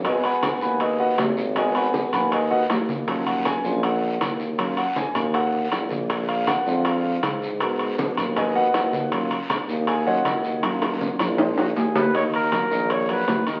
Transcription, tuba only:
\new Staff \with { instrumentName = "Tuba" } { \clef bass \time 4/4 \key ees \minor \tempo 4 = 159 aes,,8. r8. ees,4. aes,,4~ | aes,,4. ees,4. ees,4~ | ees,4. bes,,4. ees,4~ | ees,8. r8. ees,4. bes,,4~ |
bes,,4. f,4. aes,4~ | aes,4. ees,4. ees,4~ | ees,8. r8. ees,4. ees,4~ | ees,4. bes,,4. ees,4~ |
ees,4. bes,,4. ees,4 | }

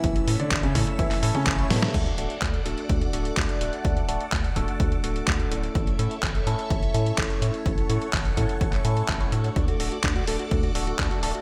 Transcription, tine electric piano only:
\new Staff \with { instrumentName = "Tine electric piano" } { \time 4/4 \key d \major \tempo 4 = 126 <a cis' e' a'>8 <a cis' e' a'>16 r8. <a cis' e' a'>4 <a cis' e' a'>8. <a cis' e' cis''>16 <a d' fis' a'>8~ | <a d' fis' a'>8 <a d' fis' a'>16 r8. <a d' fis' a'>4 <a d' fis' a'>4 <a d' fis' a'>8~ | <a d' fis' a'>8 <a d' fis' a'>16 r8. <a d' fis' a'>4 <a d' fis' a'>4 <a cis' e' a'>8~ | <a cis' e' a'>8 <a cis' e' a'>16 r8. <a cis' e' a'>4 <a cis' e' a'>4 <a cis' e' a'>8~ |
<a cis' e' a'>8 <a cis' e' a'>16 r8. <a cis' e' a'>4 <a cis' e' a'>8. <a cis' e' cis''>16 <a d' fis' a'>8~ | <a d' fis' a'>8 <a d' fis' a'>16 r8. <a d' fis' a'>4 <a d' fis' a'>4 <a d' fis' a'>8 | }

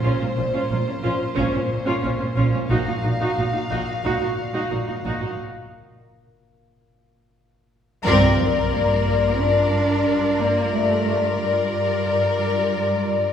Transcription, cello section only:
\new Staff \with { instrumentName = "Cello section" } { \clef bass \time 4/4 \key ees \dorian \tempo 4 = 90 bes,16 bes,16 bes,16 bes,16 bes,16 bes,16 bes,16 r16 bes,16 bes,16 r16 bes,16 bes,16 bes,16 bes,16 bes,16 | bes,16 bes,16 bes,16 bes,16 bes,16 bes,16 bes,16 r16 bes,16 bes,16 r16 bes,16 bes,16 bes,16 bes,16 bes,16 | r1 | \key g \minor c'4 bes4 d'4. bes8 |
a4 g2~ g8 r8 | }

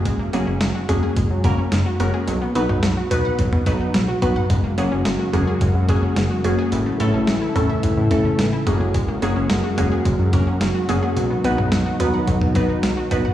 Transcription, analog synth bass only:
\new Staff \with { instrumentName = "Analog synth bass" } { \clef bass \time 4/4 \key fis \major \tempo 4 = 108 fis,,16 r16 fis,,16 fis,,16 fis,,16 r16 fis,,16 r16 fis,,16 fis,16 fis,,16 r16 fis,,16 r16 fis,,16 r16 | b,,16 r16 b,,16 b,,16 b,,16 r16 b,,16 r16 b,,16 b,16 b,,16 r16 b,,16 r16 b,,16 r16 | fis,,16 r16 fis,,16 fis,,16 fis,,16 r16 fis,,16 r16 fis,,16 fis,16 fis,,16 r16 fis,,16 r16 fis,,16 r16 | a,,16 r16 a,,16 a,,16 a,,16 r16 a,,16 r16 a,,16 a,16 a,,16 r16 a,,16 r16 fis,,8~ |
fis,,16 r16 fis,,16 fis,,16 fis,,16 r16 fis,,16 r16 fis,,16 fis,16 fis,,16 r16 fis,,16 r16 fis,,16 r16 | b,,16 r16 b,,16 b,,16 b,,16 r16 b,,16 r16 b,,16 b,16 b,,16 r16 b,,16 r16 b,,16 r16 | }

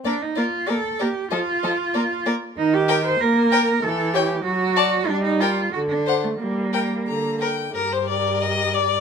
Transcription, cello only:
\new Staff \with { instrumentName = "Cello" } { \time 2/4 \key g \minor \tempo 4 = 95 d'16 ees'16 f'8 a'8 g'8 | f'4. r8 | ees'16 g'8 c''16 bes'4 | a'8 g'8 fis'4 |
d'16 ees'16 f'8 fis'16 d'8 a16 | bes4. r8 | g,2 | }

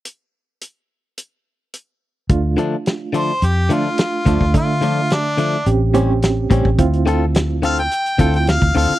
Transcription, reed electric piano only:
\new Staff \with { instrumentName = "Reed electric piano" } { \time 4/4 \key d \minor \tempo 4 = 107 r1 | <a d' f'>2 r8 <a d' f'>4 <a d' f'>8 | <a d' e''>2 <bis cis' g'>8 <bis cis' g'>4 <bis cis' g'>8 | <c' e' f'>2 r8 <c' e' f'>4. | }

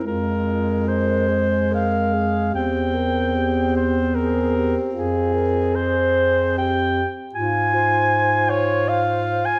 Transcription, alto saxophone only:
\new Staff \with { instrumentName = "Alto saxophone" } { \time 3/4 \key f \minor \tempo 4 = 75 f'4 bes'8 aes'8 bes'8 aes'8 | g'8 bes'8 g'4 aes'8 g'8 | f'8 bes'8 aes'4 g'8 r8 | f'8 c''2~ c''8 | }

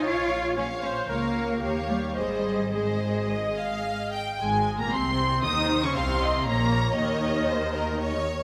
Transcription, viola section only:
\new Staff \with { instrumentName = "Viola section" } { \time 4/4 \key aes \major \tempo 4 = 116 des''4 des''8 c''8 bes'4 g'4 | aes'4 aes'2~ aes'8 r8 | aes8. bes16 c'4 ees'8. des'16 c'4 | bes4 ees2~ ees8 r8 | }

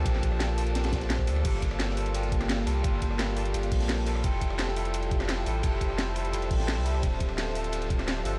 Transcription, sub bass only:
\new Staff \with { instrumentName = "Sub bass" } { \clef bass \time 4/4 \key g \dorian \tempo 4 = 172 bes,,8 bes,,2. d,8 | g,,2.~ g,,8 c,8 | g,,8 g,,4. g,,8 bes,,4. | f,,2.~ f,,8 a,,8 |
f,,8 f,,4. f,,8 a,,8. c,8. | d,,2.~ d,,8 g,,8 | }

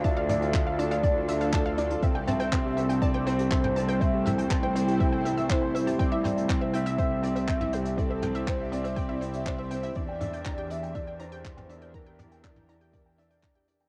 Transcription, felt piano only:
\new Staff \with { instrumentName = "Felt piano" } { \time 4/4 \key a \phrygian \tempo 4 = 121 d'16 d''16 d'16 f'16 d'16 f''16 d'16 d''16 d'16 f'16 d'16 f''16 d'16 d''16 d'16 f'16 | c'16 g''16 c'16 c''16 c'16 g'16 c'16 g''16 c'16 c''16 c'16 g'16 c'16 g''16 c'16 c''16 | c'16 g'16 c'16 g''16 c'16 c''16 c'16 g'16 c'16 g''16 c'16 e''16 e'16 g''16 c''16 g'16 | c'16 e'16 c'16 e''16 c'16 c''16 c'16 e'16 c'16 e''16 c'16 c''16 c'16 e'16 c'16 e''16 |
c'16 c''16 c'16 e'16 c'16 e''16 c'16 c''16 c'16 e'16 c'16 e''16 c'16 c''16 c'16 e'16 | d'16 g''16 d'16 d''16 d'16 g'16 d'16 g''16 d'16 d''16 d'16 g'16 d'16 g''16 d'16 d''16 | d'16 g'16 d'16 g''16 d'16 d''16 d'16 g'16 d'16 g''16 d'16 d''16 d'16 g'16 d'16 g''16 | }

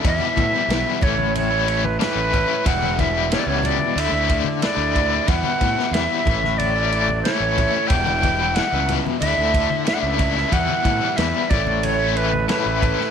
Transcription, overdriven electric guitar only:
\new Staff \with { instrumentName = "Overdriven electric guitar" } { \time 4/4 \key e \dorian \tempo 4 = 92 <e, b, e g b e'>8. <e g b e'>16 <e, b, e g b e'>8 <a, e a cis' e'>8. <a cis' e'>16 <e a cis' e'>8 <a, e a cis' e'>8 <e a cis' e'>16 <a cis' e'>16 | <e, b, e g b e'>8. <e g b e'>16 <e, b, e g b e'>4 <d a d' e'>16 <a d' e'>16 <d a d' e'>8 <d a d' e'>8 <d a d' e'>16 <a d' e'>16 | <e, b, e g b e'>8. <e g b e'>16 <e, b, e g b e'>8 <a, e a cis' e'>8. <a cis' e'>16 <e a cis' e'>8 <a, e a cis' e'>8 <e a cis' e'>16 <a cis' e'>16 | <e, b, e g b e'>8. <e g b e'>16 <e, b, e g b e'>4 <d a d' e'>16 <a d' e'>16 <d a d' e'>8 <d a d' e'>8 <d a d' e'>16 <a d' e'>16 |
<e, b, e g b e'>8. <e g b e'>16 <e, b, e g b e'>8 <a, e a cis' e'>8. <a cis' e'>16 <e a cis' e'>8 <a, e a cis' e'>8 <e a cis' e'>16 <a cis' e'>16 | }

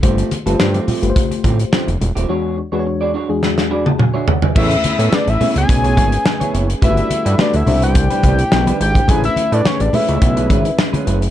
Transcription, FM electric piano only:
\new Staff \with { instrumentName = "FM electric piano" } { \time 4/4 \key e \dorian \tempo 4 = 106 << { r1 | r2 r8 b''16 a''16 gis''16 <gis' d'' e''>16 <cis'' fis''>16 <d'' gis''>16~ | \key a \major <d'' gis''>16 r2. r8. | r1 |
r1 | } \\ { <a f' g' c''>8 r16 <a f' g' b' c''>8. r16 <a f' g' b' c''>4. r8. | <e, gis d' fis' cis''>8 r16 <e, gis d' fis' b' cis''>8. r16 <e, gis d' fis' gis'>4. r8. | <a cis' gis' b'>8. r16 <a cis' gis' b'>16 r16 <a cis' gis' cis''>4. r4 | <a fis' g' b'>8. r16 <a fis' g' b'>16 r16 <b, d' e' c''>4. r4 |
<a cis' gis' b'>8. r16 <a cis' gis' b'>16 r16 <a cis' gis' b'>4. r4 | } >> }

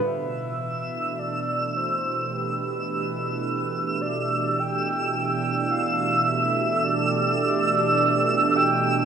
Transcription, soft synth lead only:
\new Staff \with { instrumentName = "Soft synth lead" } { \time 4/4 \key e \minor \tempo 4 = 53 e''4 d''8 c''8 b'4. d''8 | g''8 g''8 f''8 e''8 d''4. g''8 | }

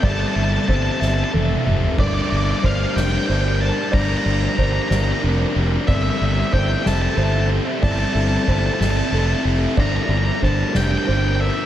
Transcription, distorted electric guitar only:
\new Staff \with { instrumentName = "Distorted electric guitar" } { \time 6/8 \key g \dorian \tempo 4. = 62 <g c' g' a' e''>8 <g' a' e''>8 <c' g' a' e''>8 <g' a' e''>8 <c' g' a' e''>8 <g' a' e''>8 | <g d' g' bes' d''>8 <g' bes' d''>8 <d' g' bes' d''>8 <g' bes' d''>8 <d' g' bes' d''>8 <g' bes' d''>8 | <g d' g' bes' d''>8 <g' bes' d''>8 <d' g' bes' d''>8 <g' bes' d''>8 <d' g' bes' d''>8 <g' bes' d''>8 | <g c' g' a' e''>8 <g' a' e''>8 <c' g' a' e''>8 <g' a' e''>8 <c' g' a' e''>8 <g' a' e''>8 |
<g c' g' a' e''>8 <g' a' e''>8 <c' g' a' e''>8 <g' a' e''>8 <c' g' a' e''>8 <g' a' e''>8 | <g d' g' bes' d''>8 <g' bes' d''>8 <d' g' bes' d''>8 <g' bes' d''>8 <d' g' bes' d''>8 <g' bes' d''>8 | }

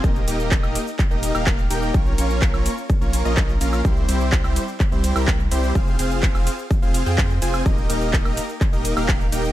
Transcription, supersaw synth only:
\new Staff \with { instrumentName = "Supersaw synth" } { \time 4/4 \key ees \mixolydian \tempo 4 = 126 <bes ees' g' bes' ees''>8 <bes ees' g' bes' ees''>8. <bes ees' g' bes' ees''>16 r8. <bes ees' g' bes' ees''>8 <bes ees' g' bes' f''>8 r16 <bes ees' g' bes' g''>8 | <bes des' f' bes' des''>8 <bes des' f' bes' des''>8. <bes des' f' bes' des''>16 r8. <bes des' f' bes' des''>8 <bes des' f' bes' ees''>8 r16 <bes des' f' bes' f''>8 | <g c' e' g' c''>8 <g c' e' g' c''>8. <g c' e' g' c''>16 r8. <g c' e' g' c''>8 <g c' e' g' bes'>16 r8 <g c' e' g' c''>8 | <c' f' aes' c'' f''>8 <c' f' aes' c'' f''>8. <c' f' aes' c'' f''>16 r8. <c' f' aes' c'' f''>8 <c' f' aes' c'' g''>8 r16 <c' f' aes' c'' aes''>8 |
<bes ees' g' bes' ees''>8 <bes ees' g' bes' ees''>8. <bes ees' g' bes' ees''>16 r8. <bes ees' g' bes' ees''>8 <bes ees' g' bes' f''>8 r16 <bes ees' g' bes' g''>8 | }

